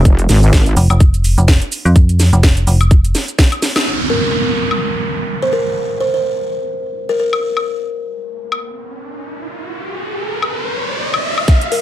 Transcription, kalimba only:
4.10 4.58 A#4 medium
5.42 5.51 C5 medium
5.53 5.71 A#4 medium
6.01 6.09 C5 medium
6.14 6.21 C5 medium
7.09 7.16 A#4 medium
7.20 7.28 A#4 medium
11.72 11.82 A#4 medium

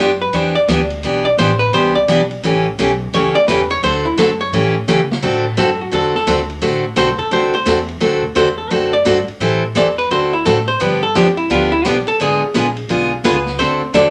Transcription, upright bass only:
0.00 0.32 F#2 loud
0.32 0.67 E2 medium
0.68 1.02 D2 loud
1.03 1.37 B1 medium
1.37 1.72 A1 loud
1.73 2.07 C2 loud
2.08 2.42 B1 loud
2.42 2.77 A1 medium
2.78 3.12 B1 loud
3.13 3.33 C#2 medium
3.35 muted upright bass stroke soft
3.48 3.82 E2 loud
3.83 4.17 D2 medium
4.17 4.51 F#2 loud
4.52 4.86 A2 medium
4.88 5.21 C#3 loud
5.23 5.57 A2 medium
5.58 5.91 F#2 medium
5.92 6.26 E2 medium
6.27 6.61 D2 loud
6.62 6.96 A1 medium
6.96 7.17 B1 loud
7.31 7.65 C2 medium
7.66 8.00 E2 loud
8.01 8.35 D2 medium
8.36 8.70 E2 loud
8.71 9.05 F#2 medium
9.06 9.26 G2 loud
9.28 muted upright bass stroke soft
9.40 9.74 A2 medium
9.75 10.09 E2 medium
10.11 10.44 D2 medium
10.46 10.79 A2 loud
10.80 11.14 G2 medium
11.15 11.49 F2 medium
11.50 11.84 D2 medium
11.85 12.06 B1 loud
12.20 12.40 G#1 medium
12.43 muted upright bass stroke soft
12.54 12.88 A#1 loud
12.89 13.23 B1 medium
13.24 13.57 C#2 loud
13.58 13.92 D2 medium
13.93 14.10 E2 loud

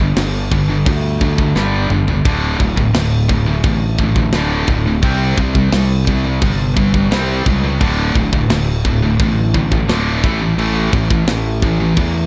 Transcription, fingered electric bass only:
0.00 0.14 G1 medium
0.17 0.82 G1 medium
0.86 1.52 D2 medium
1.56 1.88 G1 medium
1.90 2.23 G1 loud
2.25 2.57 D1 medium
2.60 2.92 D1 medium
2.94 3.60 D1 medium
3.64 4.30 A1 loud
4.33 4.66 D1 medium
4.68 5.00 D1 medium
5.03 5.35 C2 loud
5.38 5.70 C2 loud
5.72 6.38 C2 loud
6.42 7.07 G1 medium
7.11 7.44 C2 loud
7.46 7.78 C#2 medium
7.81 8.13 D1 loud
8.15 8.48 D1 medium
8.50 9.15 D1 medium
9.20 9.85 A1 loud
9.89 10.21 D1 medium
10.23 10.56 A1 medium
10.58 10.90 A1 loud
10.93 11.25 A1 loud
11.28 11.93 A1 medium
11.97 12.26 E2 medium

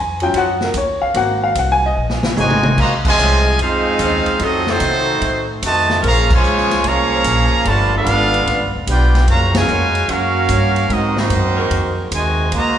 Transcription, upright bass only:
0.00 0.33 F2 loud
0.34 0.73 F#2 medium
0.74 1.00 D#2 loud
1.02 muted upright bass stroke medium
1.14 1.54 G#1 loud
1.55 1.95 C2 loud
1.97 2.36 A#1 medium
2.36 2.76 G#1 loud
2.77 3.17 C#2 medium
3.18 3.58 C2 loud
3.59 3.98 F2 medium
3.99 4.25 D#2 loud
4.27 muted upright bass stroke soft
4.40 4.79 F2 loud
4.80 5.20 C3 loud
5.21 5.61 A2 medium
5.62 6.02 F2 loud
6.03 6.42 A#1 loud
6.43 6.83 C#2 loud
6.84 7.23 C2 medium
7.24 7.50 A#1 loud
7.53 muted upright bass stroke medium
7.65 8.05 G1 loud
8.06 8.45 G#1 loud
8.47 8.60 A1 medium
8.60 8.74 G1 medium
8.75 8.86 F1 medium
8.87 9.27 B1 loud
9.28 9.67 F#2 loud
9.68 10.08 F2 loud
10.08 10.48 F#2 medium
10.49 10.89 G2 loud
10.89 11.29 G#2 loud
11.29 11.69 F#2 loud
11.70 12.10 F2 medium
12.11 12.51 D#2 loud
12.52 12.78 C#2 medium

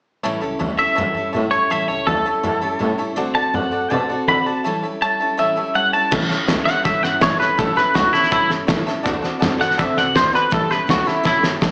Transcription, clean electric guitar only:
0.79 1.50 E5 medium
1.51 1.71 C#5 medium
1.71 1.88 E5 medium
1.88 2.07 C#5 medium
2.07 3.14 A4 medium
3.35 3.55 A5 loud
3.55 3.92 F#5 medium
3.92 4.27 A5 loud
4.28 4.46 B5 loud
4.46 4.82 A5 loud
5.02 5.38 A5 loud
5.39 5.74 E5 medium
5.75 5.93 F#5 medium
5.93 6.11 A5 loud
6.65 6.84 F#5 medium
6.85 7.03 E5 medium
7.03 7.21 F#5 medium
7.22 7.39 C#5 medium
7.40 7.58 B4 medium
7.59 7.76 A4 medium
7.77 7.95 B4 loud
7.95 8.13 F#4 medium
8.13 8.31 E4 medium
8.32 8.50 E4 loud
9.61 9.79 F#5 medium
9.79 9.98 E5 medium
9.98 10.15 F#5 loud
10.16 10.34 C5 medium
10.35 10.52 B4 medium
10.54 10.71 A4 medium
10.71 10.88 B4 medium
10.90 11.07 F#4 loud
11.07 11.25 E4 medium
11.27 11.44 E4 loud

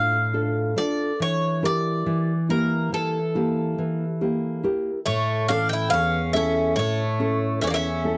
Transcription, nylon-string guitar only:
0.00 0.74 A2 medium
0.00 0.16 D4 soft
0.00 0.16 F4 soft
0.00 0.16 A4 medium
0.33 0.75 D4 soft
0.33 0.76 F4 soft
0.33 0.76 A4 medium
0.76 1.11 D4 medium
0.76 1.11 F4 medium
0.76 1.11 A4 medium
1.20 2.04 E3 medium
1.63 2.32 E4 medium
1.63 2.32 G4 medium
1.63 2.32 A#4 medium
2.06 2.90 E3 medium
2.49 3.18 A#3 soft
2.49 3.18 E4 soft
2.49 3.18 G4 soft
2.92 3.76 E3 medium
3.35 4.04 A#3 medium
3.35 4.04 E4 medium
3.35 4.04 G4 medium
3.78 4.61 E3 medium
4.21 4.90 A#3 medium
4.21 4.62 E4 soft
4.21 4.63 G4 soft
4.63 4.98 E4 medium
4.63 4.98 G4 medium
4.63 4.99 A#4 medium
5.07 5.90 A2 medium
5.49 6.18 E3 soft
5.49 6.17 C#4 medium
5.49 6.18 A4 medium
5.92 6.75 E2 medium
6.34 7.03 C#4 soft
6.34 7.03 E4 soft
6.34 7.03 A4 medium
6.77 7.60 A2 medium
7.20 7.88 C#4 soft
7.20 7.88 E4 medium
7.20 7.88 A4 medium
7.62 8.17 E2 medium
8.04 8.17 C#4 medium
8.04 8.17 E4 soft
8.04 8.17 A4 medium

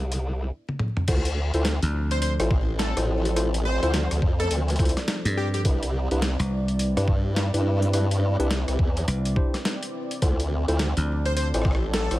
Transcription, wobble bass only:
0.00 0.51 C2 medium
1.08 1.51 D2 loud
1.54 1.80 D2 loud
2.40 2.94 A1 loud
2.97 3.80 A1 loud
3.83 4.09 D2 medium
4.12 4.21 D2 loud
4.22 4.49 F2 loud
4.51 4.94 D2 loud
5.65 6.08 C2 loud
6.11 6.37 C2 loud
6.97 7.51 G2 loud
7.54 8.37 G2 loud
8.39 8.65 C2 loud
8.68 8.78 C2 loud
8.79 9.06 E2 loud
10.22 10.65 D2 loud
10.68 10.94 D2 loud
11.54 12.08 A1 loud
12.11 12.19 A1 loud

